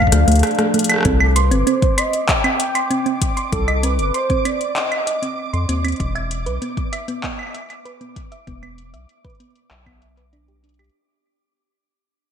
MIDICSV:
0, 0, Header, 1, 7, 480
1, 0, Start_track
1, 0, Key_signature, -3, "minor"
1, 0, Tempo, 618557
1, 814, Time_signature, 4, 2, 24, 8
1, 9560, End_track
2, 0, Start_track
2, 0, Title_t, "Synth texture"
2, 0, Program_c, 0, 99
2, 815, Note_on_c, 0, 86, 85
2, 8504, Note_off_c, 0, 86, 0
2, 9560, End_track
3, 0, Start_track
3, 0, Title_t, "Soft synth lead"
3, 0, Program_c, 1, 80
3, 0, Note_on_c, 1, 77, 98
3, 544, Note_off_c, 1, 77, 0
3, 814, Note_on_c, 1, 69, 88
3, 1037, Note_off_c, 1, 69, 0
3, 1054, Note_on_c, 1, 71, 86
3, 1293, Note_on_c, 1, 72, 96
3, 1305, Note_off_c, 1, 71, 0
3, 1534, Note_on_c, 1, 75, 96
3, 1546, Note_off_c, 1, 72, 0
3, 1770, Note_off_c, 1, 75, 0
3, 1775, Note_on_c, 1, 79, 105
3, 2463, Note_off_c, 1, 79, 0
3, 2735, Note_on_c, 1, 69, 87
3, 2975, Note_on_c, 1, 71, 87
3, 2987, Note_off_c, 1, 69, 0
3, 3216, Note_on_c, 1, 72, 98
3, 3228, Note_off_c, 1, 71, 0
3, 3456, Note_on_c, 1, 74, 98
3, 3468, Note_off_c, 1, 72, 0
3, 3697, Note_on_c, 1, 75, 107
3, 3709, Note_off_c, 1, 74, 0
3, 4416, Note_off_c, 1, 75, 0
3, 9560, End_track
4, 0, Start_track
4, 0, Title_t, "Analog synth pad"
4, 0, Program_c, 2, 89
4, 0, Note_on_c, 2, 53, 81
4, 0, Note_on_c, 2, 57, 84
4, 0, Note_on_c, 2, 62, 92
4, 0, Note_on_c, 2, 69, 75
4, 0, Note_on_c, 2, 74, 91
4, 814, Note_off_c, 2, 53, 0
4, 814, Note_off_c, 2, 69, 0
4, 815, Note_off_c, 2, 57, 0
4, 815, Note_off_c, 2, 62, 0
4, 815, Note_off_c, 2, 74, 0
4, 9560, End_track
5, 0, Start_track
5, 0, Title_t, "Synth arpeggio sound"
5, 0, Program_c, 3, 84
5, 94, Note_on_c, 3, 57, 77
5, 159, Note_off_c, 3, 57, 0
5, 214, Note_on_c, 3, 57, 99
5, 253, Note_off_c, 3, 57, 0
5, 454, Note_on_c, 3, 57, 79
5, 520, Note_off_c, 3, 57, 0
5, 574, Note_on_c, 3, 57, 78
5, 672, Note_off_c, 3, 57, 0
5, 815, Note_on_c, 3, 60, 80
5, 854, Note_off_c, 3, 60, 0
5, 1054, Note_on_c, 3, 84, 98
5, 1093, Note_off_c, 3, 84, 0
5, 1174, Note_on_c, 3, 60, 96
5, 1239, Note_off_c, 3, 60, 0
5, 1294, Note_on_c, 3, 60, 84
5, 1359, Note_off_c, 3, 60, 0
5, 1534, Note_on_c, 3, 84, 99
5, 1599, Note_off_c, 3, 84, 0
5, 1773, Note_on_c, 3, 75, 96
5, 1813, Note_off_c, 3, 75, 0
5, 1894, Note_on_c, 3, 60, 74
5, 1933, Note_off_c, 3, 60, 0
5, 2134, Note_on_c, 3, 84, 94
5, 2173, Note_off_c, 3, 84, 0
5, 2254, Note_on_c, 3, 60, 100
5, 2320, Note_off_c, 3, 60, 0
5, 2374, Note_on_c, 3, 60, 77
5, 2440, Note_off_c, 3, 60, 0
5, 2615, Note_on_c, 3, 84, 98
5, 2680, Note_off_c, 3, 84, 0
5, 2855, Note_on_c, 3, 75, 96
5, 2894, Note_off_c, 3, 75, 0
5, 2974, Note_on_c, 3, 60, 75
5, 3013, Note_off_c, 3, 60, 0
5, 3215, Note_on_c, 3, 84, 101
5, 3254, Note_off_c, 3, 84, 0
5, 3335, Note_on_c, 3, 60, 98
5, 3400, Note_off_c, 3, 60, 0
5, 3455, Note_on_c, 3, 60, 75
5, 3520, Note_off_c, 3, 60, 0
5, 3695, Note_on_c, 3, 84, 95
5, 3760, Note_off_c, 3, 84, 0
5, 3935, Note_on_c, 3, 75, 96
5, 3974, Note_off_c, 3, 75, 0
5, 4054, Note_on_c, 3, 60, 70
5, 4093, Note_off_c, 3, 60, 0
5, 4295, Note_on_c, 3, 84, 102
5, 4334, Note_off_c, 3, 84, 0
5, 4415, Note_on_c, 3, 60, 96
5, 4480, Note_off_c, 3, 60, 0
5, 4535, Note_on_c, 3, 60, 74
5, 4600, Note_off_c, 3, 60, 0
5, 4774, Note_on_c, 3, 76, 97
5, 4840, Note_off_c, 3, 76, 0
5, 5015, Note_on_c, 3, 71, 98
5, 5054, Note_off_c, 3, 71, 0
5, 5135, Note_on_c, 3, 59, 82
5, 5174, Note_off_c, 3, 59, 0
5, 5375, Note_on_c, 3, 76, 96
5, 5414, Note_off_c, 3, 76, 0
5, 5495, Note_on_c, 3, 59, 98
5, 5560, Note_off_c, 3, 59, 0
5, 5615, Note_on_c, 3, 59, 80
5, 5680, Note_off_c, 3, 59, 0
5, 5855, Note_on_c, 3, 76, 96
5, 5920, Note_off_c, 3, 76, 0
5, 6095, Note_on_c, 3, 71, 98
5, 6134, Note_off_c, 3, 71, 0
5, 6215, Note_on_c, 3, 59, 75
5, 6254, Note_off_c, 3, 59, 0
5, 6455, Note_on_c, 3, 76, 94
5, 6494, Note_off_c, 3, 76, 0
5, 6574, Note_on_c, 3, 59, 98
5, 6640, Note_off_c, 3, 59, 0
5, 6695, Note_on_c, 3, 59, 71
5, 6760, Note_off_c, 3, 59, 0
5, 6935, Note_on_c, 3, 76, 96
5, 7000, Note_off_c, 3, 76, 0
5, 7174, Note_on_c, 3, 71, 95
5, 7213, Note_off_c, 3, 71, 0
5, 7294, Note_on_c, 3, 59, 72
5, 7333, Note_off_c, 3, 59, 0
5, 7534, Note_on_c, 3, 76, 93
5, 7573, Note_off_c, 3, 76, 0
5, 7654, Note_on_c, 3, 59, 94
5, 7720, Note_off_c, 3, 59, 0
5, 7774, Note_on_c, 3, 76, 69
5, 7839, Note_off_c, 3, 76, 0
5, 7894, Note_on_c, 3, 71, 69
5, 7960, Note_off_c, 3, 71, 0
5, 8015, Note_on_c, 3, 62, 97
5, 8054, Note_off_c, 3, 62, 0
5, 8134, Note_on_c, 3, 67, 74
5, 8173, Note_off_c, 3, 67, 0
5, 8254, Note_on_c, 3, 62, 73
5, 8319, Note_off_c, 3, 62, 0
5, 8374, Note_on_c, 3, 67, 72
5, 8440, Note_off_c, 3, 67, 0
5, 9560, End_track
6, 0, Start_track
6, 0, Title_t, "Analog synth bass"
6, 0, Program_c, 4, 38
6, 95, Note_on_c, 4, 38, 93
6, 192, Note_off_c, 4, 38, 0
6, 214, Note_on_c, 4, 38, 96
6, 334, Note_off_c, 4, 38, 0
6, 815, Note_on_c, 4, 36, 97
6, 1175, Note_on_c, 4, 31, 84
6, 1186, Note_off_c, 4, 36, 0
6, 1272, Note_off_c, 4, 31, 0
6, 2735, Note_on_c, 4, 36, 96
6, 3095, Note_on_c, 4, 31, 83
6, 3107, Note_off_c, 4, 36, 0
6, 3192, Note_off_c, 4, 31, 0
6, 4295, Note_on_c, 4, 41, 95
6, 4392, Note_off_c, 4, 41, 0
6, 4415, Note_on_c, 4, 39, 94
6, 4610, Note_off_c, 4, 39, 0
6, 4656, Note_on_c, 4, 28, 94
6, 5015, Note_on_c, 4, 35, 86
6, 5027, Note_off_c, 4, 28, 0
6, 5112, Note_off_c, 4, 35, 0
6, 6575, Note_on_c, 4, 28, 94
6, 6934, Note_on_c, 4, 35, 84
6, 6946, Note_off_c, 4, 28, 0
6, 7032, Note_off_c, 4, 35, 0
6, 7535, Note_on_c, 4, 35, 93
6, 8459, Note_off_c, 4, 35, 0
6, 9560, End_track
7, 0, Start_track
7, 0, Title_t, "Drums"
7, 15, Note_on_c, 9, 36, 49
7, 55, Note_off_c, 9, 36, 0
7, 55, Note_on_c, 9, 36, 63
7, 95, Note_on_c, 9, 37, 63
7, 95, Note_on_c, 9, 42, 96
7, 133, Note_off_c, 9, 36, 0
7, 172, Note_off_c, 9, 37, 0
7, 172, Note_off_c, 9, 42, 0
7, 215, Note_on_c, 9, 42, 51
7, 245, Note_off_c, 9, 42, 0
7, 245, Note_on_c, 9, 42, 42
7, 275, Note_off_c, 9, 42, 0
7, 275, Note_on_c, 9, 42, 35
7, 305, Note_off_c, 9, 42, 0
7, 305, Note_on_c, 9, 42, 28
7, 335, Note_off_c, 9, 42, 0
7, 335, Note_on_c, 9, 37, 76
7, 335, Note_on_c, 9, 42, 53
7, 395, Note_off_c, 9, 42, 0
7, 395, Note_on_c, 9, 42, 15
7, 412, Note_off_c, 9, 37, 0
7, 424, Note_off_c, 9, 42, 0
7, 424, Note_on_c, 9, 42, 12
7, 454, Note_off_c, 9, 42, 0
7, 454, Note_on_c, 9, 37, 74
7, 454, Note_on_c, 9, 42, 28
7, 532, Note_off_c, 9, 37, 0
7, 532, Note_off_c, 9, 42, 0
7, 574, Note_on_c, 9, 42, 42
7, 614, Note_off_c, 9, 42, 0
7, 614, Note_on_c, 9, 42, 56
7, 655, Note_off_c, 9, 42, 0
7, 655, Note_on_c, 9, 42, 78
7, 694, Note_off_c, 9, 42, 0
7, 694, Note_on_c, 9, 37, 38
7, 694, Note_on_c, 9, 42, 53
7, 694, Note_on_c, 9, 75, 65
7, 711, Note_off_c, 9, 37, 0
7, 711, Note_on_c, 9, 37, 46
7, 729, Note_off_c, 9, 37, 0
7, 729, Note_on_c, 9, 37, 51
7, 746, Note_off_c, 9, 37, 0
7, 746, Note_on_c, 9, 37, 58
7, 763, Note_off_c, 9, 37, 0
7, 763, Note_on_c, 9, 37, 63
7, 772, Note_off_c, 9, 42, 0
7, 772, Note_off_c, 9, 75, 0
7, 780, Note_off_c, 9, 37, 0
7, 780, Note_on_c, 9, 37, 70
7, 797, Note_off_c, 9, 37, 0
7, 797, Note_on_c, 9, 37, 78
7, 814, Note_on_c, 9, 42, 56
7, 815, Note_on_c, 9, 36, 107
7, 875, Note_off_c, 9, 37, 0
7, 892, Note_off_c, 9, 42, 0
7, 893, Note_off_c, 9, 36, 0
7, 935, Note_on_c, 9, 75, 76
7, 1013, Note_off_c, 9, 75, 0
7, 1055, Note_on_c, 9, 42, 87
7, 1132, Note_off_c, 9, 42, 0
7, 1176, Note_on_c, 9, 42, 50
7, 1253, Note_off_c, 9, 42, 0
7, 1295, Note_on_c, 9, 42, 52
7, 1373, Note_off_c, 9, 42, 0
7, 1415, Note_on_c, 9, 36, 98
7, 1415, Note_on_c, 9, 42, 25
7, 1493, Note_off_c, 9, 36, 0
7, 1493, Note_off_c, 9, 42, 0
7, 1535, Note_on_c, 9, 42, 96
7, 1535, Note_on_c, 9, 75, 58
7, 1613, Note_off_c, 9, 42, 0
7, 1613, Note_off_c, 9, 75, 0
7, 1656, Note_on_c, 9, 42, 52
7, 1733, Note_off_c, 9, 42, 0
7, 1775, Note_on_c, 9, 36, 113
7, 1775, Note_on_c, 9, 39, 115
7, 1775, Note_on_c, 9, 42, 52
7, 1853, Note_off_c, 9, 36, 0
7, 1853, Note_off_c, 9, 39, 0
7, 1853, Note_off_c, 9, 42, 0
7, 1895, Note_on_c, 9, 42, 27
7, 1895, Note_on_c, 9, 75, 78
7, 1973, Note_off_c, 9, 42, 0
7, 1973, Note_off_c, 9, 75, 0
7, 2015, Note_on_c, 9, 42, 95
7, 2093, Note_off_c, 9, 42, 0
7, 2135, Note_on_c, 9, 42, 54
7, 2135, Note_on_c, 9, 75, 52
7, 2213, Note_off_c, 9, 42, 0
7, 2213, Note_off_c, 9, 75, 0
7, 2255, Note_on_c, 9, 42, 53
7, 2333, Note_off_c, 9, 42, 0
7, 2375, Note_on_c, 9, 42, 26
7, 2453, Note_off_c, 9, 42, 0
7, 2495, Note_on_c, 9, 36, 105
7, 2495, Note_on_c, 9, 42, 93
7, 2573, Note_off_c, 9, 36, 0
7, 2573, Note_off_c, 9, 42, 0
7, 2616, Note_on_c, 9, 42, 53
7, 2693, Note_off_c, 9, 42, 0
7, 2735, Note_on_c, 9, 36, 112
7, 2735, Note_on_c, 9, 42, 53
7, 2813, Note_off_c, 9, 36, 0
7, 2813, Note_off_c, 9, 42, 0
7, 2855, Note_on_c, 9, 42, 25
7, 2855, Note_on_c, 9, 75, 76
7, 2933, Note_off_c, 9, 42, 0
7, 2933, Note_off_c, 9, 75, 0
7, 2975, Note_on_c, 9, 42, 90
7, 3053, Note_off_c, 9, 42, 0
7, 3096, Note_on_c, 9, 42, 49
7, 3173, Note_off_c, 9, 42, 0
7, 3215, Note_on_c, 9, 42, 52
7, 3293, Note_off_c, 9, 42, 0
7, 3335, Note_on_c, 9, 36, 102
7, 3335, Note_on_c, 9, 42, 26
7, 3413, Note_off_c, 9, 36, 0
7, 3413, Note_off_c, 9, 42, 0
7, 3456, Note_on_c, 9, 42, 88
7, 3456, Note_on_c, 9, 75, 58
7, 3533, Note_off_c, 9, 42, 0
7, 3533, Note_off_c, 9, 75, 0
7, 3576, Note_on_c, 9, 42, 53
7, 3653, Note_off_c, 9, 42, 0
7, 3696, Note_on_c, 9, 39, 118
7, 3696, Note_on_c, 9, 42, 53
7, 3774, Note_off_c, 9, 39, 0
7, 3774, Note_off_c, 9, 42, 0
7, 3816, Note_on_c, 9, 42, 26
7, 3816, Note_on_c, 9, 75, 74
7, 3893, Note_off_c, 9, 42, 0
7, 3893, Note_off_c, 9, 75, 0
7, 3935, Note_on_c, 9, 42, 94
7, 4013, Note_off_c, 9, 42, 0
7, 4056, Note_on_c, 9, 42, 52
7, 4133, Note_off_c, 9, 42, 0
7, 4296, Note_on_c, 9, 42, 26
7, 4374, Note_off_c, 9, 42, 0
7, 4415, Note_on_c, 9, 42, 89
7, 4493, Note_off_c, 9, 42, 0
7, 4536, Note_on_c, 9, 42, 49
7, 4536, Note_on_c, 9, 75, 58
7, 4566, Note_off_c, 9, 42, 0
7, 4566, Note_on_c, 9, 42, 39
7, 4596, Note_off_c, 9, 42, 0
7, 4596, Note_on_c, 9, 42, 32
7, 4613, Note_off_c, 9, 75, 0
7, 4626, Note_off_c, 9, 42, 0
7, 4626, Note_on_c, 9, 42, 26
7, 4656, Note_off_c, 9, 42, 0
7, 4656, Note_on_c, 9, 36, 112
7, 4656, Note_on_c, 9, 42, 53
7, 4733, Note_off_c, 9, 36, 0
7, 4734, Note_off_c, 9, 42, 0
7, 4777, Note_on_c, 9, 42, 25
7, 4777, Note_on_c, 9, 75, 72
7, 4854, Note_off_c, 9, 42, 0
7, 4854, Note_off_c, 9, 75, 0
7, 4896, Note_on_c, 9, 42, 82
7, 4974, Note_off_c, 9, 42, 0
7, 5016, Note_on_c, 9, 42, 48
7, 5093, Note_off_c, 9, 42, 0
7, 5136, Note_on_c, 9, 42, 50
7, 5213, Note_off_c, 9, 42, 0
7, 5256, Note_on_c, 9, 36, 101
7, 5256, Note_on_c, 9, 42, 24
7, 5333, Note_off_c, 9, 36, 0
7, 5334, Note_off_c, 9, 42, 0
7, 5376, Note_on_c, 9, 42, 86
7, 5376, Note_on_c, 9, 75, 56
7, 5453, Note_off_c, 9, 42, 0
7, 5453, Note_off_c, 9, 75, 0
7, 5495, Note_on_c, 9, 42, 50
7, 5573, Note_off_c, 9, 42, 0
7, 5615, Note_on_c, 9, 39, 113
7, 5615, Note_on_c, 9, 42, 48
7, 5616, Note_on_c, 9, 36, 115
7, 5693, Note_off_c, 9, 36, 0
7, 5693, Note_off_c, 9, 39, 0
7, 5693, Note_off_c, 9, 42, 0
7, 5735, Note_on_c, 9, 75, 67
7, 5765, Note_off_c, 9, 75, 0
7, 5765, Note_on_c, 9, 75, 55
7, 5794, Note_off_c, 9, 75, 0
7, 5794, Note_on_c, 9, 75, 45
7, 5825, Note_off_c, 9, 75, 0
7, 5825, Note_on_c, 9, 75, 37
7, 5855, Note_off_c, 9, 75, 0
7, 5855, Note_on_c, 9, 42, 90
7, 5855, Note_on_c, 9, 75, 32
7, 5885, Note_off_c, 9, 75, 0
7, 5885, Note_on_c, 9, 75, 26
7, 5916, Note_off_c, 9, 75, 0
7, 5916, Note_on_c, 9, 75, 21
7, 5932, Note_off_c, 9, 42, 0
7, 5945, Note_off_c, 9, 75, 0
7, 5945, Note_on_c, 9, 75, 18
7, 5975, Note_off_c, 9, 75, 0
7, 5975, Note_on_c, 9, 42, 50
7, 5975, Note_on_c, 9, 75, 49
7, 6053, Note_off_c, 9, 42, 0
7, 6053, Note_off_c, 9, 75, 0
7, 6095, Note_on_c, 9, 42, 48
7, 6173, Note_off_c, 9, 42, 0
7, 6215, Note_on_c, 9, 42, 25
7, 6293, Note_off_c, 9, 42, 0
7, 6335, Note_on_c, 9, 36, 105
7, 6335, Note_on_c, 9, 42, 87
7, 6412, Note_off_c, 9, 36, 0
7, 6412, Note_off_c, 9, 42, 0
7, 6455, Note_on_c, 9, 42, 47
7, 6532, Note_off_c, 9, 42, 0
7, 6575, Note_on_c, 9, 36, 101
7, 6575, Note_on_c, 9, 42, 49
7, 6652, Note_off_c, 9, 36, 0
7, 6653, Note_off_c, 9, 42, 0
7, 6695, Note_on_c, 9, 42, 23
7, 6695, Note_on_c, 9, 75, 66
7, 6773, Note_off_c, 9, 42, 0
7, 6773, Note_off_c, 9, 75, 0
7, 6815, Note_on_c, 9, 42, 79
7, 6892, Note_off_c, 9, 42, 0
7, 6935, Note_on_c, 9, 42, 45
7, 7013, Note_off_c, 9, 42, 0
7, 7055, Note_on_c, 9, 42, 46
7, 7132, Note_off_c, 9, 42, 0
7, 7174, Note_on_c, 9, 42, 22
7, 7175, Note_on_c, 9, 36, 92
7, 7215, Note_off_c, 9, 42, 0
7, 7215, Note_on_c, 9, 42, 18
7, 7252, Note_off_c, 9, 36, 0
7, 7255, Note_off_c, 9, 42, 0
7, 7255, Note_on_c, 9, 42, 14
7, 7295, Note_off_c, 9, 42, 0
7, 7295, Note_on_c, 9, 42, 83
7, 7373, Note_off_c, 9, 42, 0
7, 7375, Note_on_c, 9, 42, 8
7, 7415, Note_off_c, 9, 42, 0
7, 7415, Note_on_c, 9, 42, 46
7, 7492, Note_off_c, 9, 42, 0
7, 7535, Note_on_c, 9, 39, 109
7, 7535, Note_on_c, 9, 42, 47
7, 7612, Note_off_c, 9, 39, 0
7, 7612, Note_off_c, 9, 42, 0
7, 7655, Note_on_c, 9, 36, 77
7, 7655, Note_on_c, 9, 42, 23
7, 7655, Note_on_c, 9, 75, 64
7, 7732, Note_off_c, 9, 36, 0
7, 7733, Note_off_c, 9, 42, 0
7, 7733, Note_off_c, 9, 75, 0
7, 7774, Note_on_c, 9, 42, 84
7, 7852, Note_off_c, 9, 42, 0
7, 7895, Note_on_c, 9, 42, 49
7, 7972, Note_off_c, 9, 42, 0
7, 8015, Note_on_c, 9, 42, 46
7, 8092, Note_off_c, 9, 42, 0
7, 8135, Note_on_c, 9, 42, 23
7, 8213, Note_off_c, 9, 42, 0
7, 8254, Note_on_c, 9, 42, 78
7, 8295, Note_off_c, 9, 42, 0
7, 8295, Note_on_c, 9, 42, 66
7, 8335, Note_off_c, 9, 42, 0
7, 8335, Note_on_c, 9, 42, 52
7, 8375, Note_off_c, 9, 42, 0
7, 8375, Note_on_c, 9, 42, 46
7, 8375, Note_on_c, 9, 75, 52
7, 8414, Note_off_c, 9, 42, 0
7, 8414, Note_on_c, 9, 42, 35
7, 8452, Note_off_c, 9, 75, 0
7, 8454, Note_off_c, 9, 42, 0
7, 8454, Note_on_c, 9, 42, 28
7, 8532, Note_off_c, 9, 42, 0
7, 9560, End_track
0, 0, End_of_file